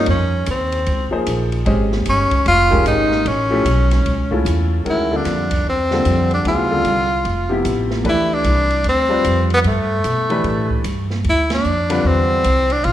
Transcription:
0.06 upright bass F2, ride
0.10 tenor saxophone C#4
0.46 upright bass D#2, hi-hat pedal, ride
0.51 tenor saxophone C4
0.72 ride
0.86 upright bass C#2, ride
1.11 upright piano F3 A#3 D#4 G#4 C5, muted upright bass stroke
1.27 upright bass A#1, hi-hat pedal, ride
1.52 ride
1.65 upright bass G#1, upright piano G#3 C#4 G4 C5 D#5, ride
1.92 snare
2.06 upright bass G1, hi-hat pedal, ride
2.10 tenor saxophone C#4
2.31 muted upright bass stroke, kick, ride
2.46 upright bass F1, tenor saxophone F4, ride
2.71 upright piano D#3 G#3 C#4 G4 A#4, kick
2.85 upright bass G#1, tenor saxophone D#4, hi-hat pedal, ride
3.11 snare
3.25 upright bass A1, tenor saxophone C#4, ride
3.51 upright piano F3 A3 C#4 E4 G4
3.65 upright bass B1, hi-hat pedal, ride
3.91 snare, ride
4.05 upright bass C#2, ride
4.31 upright piano A3 C#4 E4 F4 A4, kick
4.45 upright bass E2, hi-hat pedal, ride
4.85 upright bass D2, upright piano D#3 G#3 C#4 F#4 A#4, ride
4.90 tenor saxophone E4
5.11 upright piano D3 G3 C4 F4 A4
5.16 tenor saxophone D4
5.25 upright bass F2, snare, hi-hat pedal, ride
5.51 kick, ride
5.65 upright bass E2
5.69 tenor saxophone C4
5.91 upright piano D3 G3 C4 F4 A4, snare
6.05 upright bass F2, hi-hat pedal, ride
6.31 tenor saxophone D4, ride
6.45 upright bass D2, upright piano C#3 F#3 B3 E4 G#4, tenor saxophone F4, ride
6.70 upright piano D3 G3 C4 F4 A4
6.84 upright bass C2, hi-hat pedal, ride
7.25 upright bass F1, ride
7.49 upright piano C3 F3 B3 E4 G4
7.65 upright bass A1, hi-hat pedal, ride
7.91 snare
8.04 upright bass D2, upright piano E3 A3 D4 G4 B4, ride
8.09 tenor saxophone E4
8.34 tenor saxophone D4
8.44 upright bass C2, hi-hat pedal, ride
8.71 ride
8.84 upright bass D2, ride
8.89 tenor saxophone C4
9.09 upright piano G3 C4 F4 B4 D5
9.24 upright bass F2, hi-hat pedal, ride
9.50 tenor saxophone B3, ride
9.64 upright bass G2, tenor saxophone A3, ride
10.04 upright bass B2, hi-hat pedal, ride
10.30 upright piano E3 A3 D4 G4 B4, ride
10.44 upright bass A2, ride
10.70 kick
10.84 upright bass G2, hi-hat pedal, ride
11.10 snare
11.24 upright bass D2, ride
11.30 tenor saxophone E4
11.50 tenor saxophone D4, snare, ride
11.64 upright bass F2, hi-hat pedal
11.89 upright piano D3 G3 C4 F4 B4, ride
12.04 upright bass E2, tenor saxophone C4
12.44 upright bass C2, hi-hat pedal, ride
12.70 tenor saxophone D4, ride
12.84 upright bass A1, tenor saxophone F4, ride

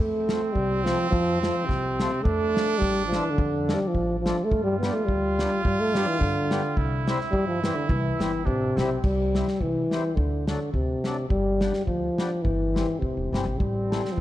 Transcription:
Already playing: trumpet C4
0.00 upright bass F2, euphonium A3
0.28 accordion F3 A3 C4, snare, hi-hat pedal
0.53 upright bass C2, euphonium G3, kick
0.84 euphonium F3, accordion F3 A3 C4, snare, hi-hat pedal
1.11 upright bass F2, euphonium F3, kick
1.41 euphonium F3, accordion F3 A3 C4, snare, hi-hat pedal
1.66 upright bass C2, euphonium C3, kick
1.70 snare
2.00 accordion F3 A3 C4, snare, hi-hat pedal
2.22 upright bass F2, euphonium A3, trumpet D4, kick
2.55 accordion F3 A3 D4, snare, hi-hat pedal
2.78 upright bass A1, euphonium G3, kick
3.06 euphonium F3
3.12 accordion F3 A3 D4, snare, hi-hat pedal
3.19 euphonium E3
3.30 euphonium D3
3.38 upright bass F2, kick
3.68 accordion F3 A3 D4, snare, hi-hat pedal
3.74 euphonium G3
3.88 euphonium F3
3.94 upright bass A1, kick
4.20 euphonium F3
4.25 accordion F3 A3 D4, snare, hi-hat pedal
4.44 euphonium A3
4.51 upright bass G2, trumpet F4, kick
4.64 euphonium G3
4.79 accordion G3 B3, euphonium B3, snare, hi-hat pedal
4.84 accordion D4
4.92 euphonium A3
5.05 upright bass D2, euphonium G3, kick
5.39 accordion G3 B3 D4, snare, hi-hat pedal
5.64 upright bass G2, euphonium G3, kick
5.80 euphonium A3
5.94 accordion G3 B3 D4, euphonium G3, snare, hi-hat pedal
6.07 euphonium E3
6.19 upright bass G2, euphonium D3, kick
6.51 accordion G3 B3 D4, snare, hi-hat pedal
6.77 upright bass C2, trumpet E4, kick
7.07 accordion G3 C4 E4, snare, hi-hat pedal
7.20 snare
7.32 upright bass G2, euphonium G3, kick
7.47 euphonium F3
7.63 euphonium E3, accordion G3 C4 E4, snare, hi-hat pedal
7.75 euphonium D3
7.88 upright bass C2, euphonium E3, kick
8.19 upright bass G1, accordion G3 C4 E4, snare, hi-hat pedal
8.45 upright bass A1, euphonium C3, trumpet D4, kick
8.76 upright bass B1, accordion G3 C4 E4, trumpet C4, snare, hi-hat pedal
9.04 upright bass C2, euphonium G3, kick, crash
9.35 accordion G3 C4 E4, snare
9.48 snare
9.61 upright bass C2, euphonium E3, kick
9.91 accordion G3 C4 E4, snare
10.16 upright bass D2, euphonium D3, kick
10.47 euphonium D3, accordion F#3 A3 D4, snare
10.73 upright bass D2, euphonium C3, kick
11.04 accordion F#3 A3 D4, snare
11.29 upright bass G1, euphonium G3, kick
11.61 accordion G3 B3 D4, snare
11.73 snare
11.86 upright bass D2, euphonium F3, kick
12.18 accordion G3 B3 D4, snare
12.42 upright bass G1, euphonium E3, kick
12.74 accordion E3 G3 C4, snare
12.99 upright bass D1, euphonium C3, kick
13.17 upright bass E1
13.33 upright bass G1, accordion E3 G3 C4, snare
13.45 upright bass A1
13.58 upright bass A1, euphonium G3, trumpet C4, kick
13.90 accordion E3 A3 C4, snare
14.05 snare
14.12 euphonium E3 F3
14.18 upright bass E2

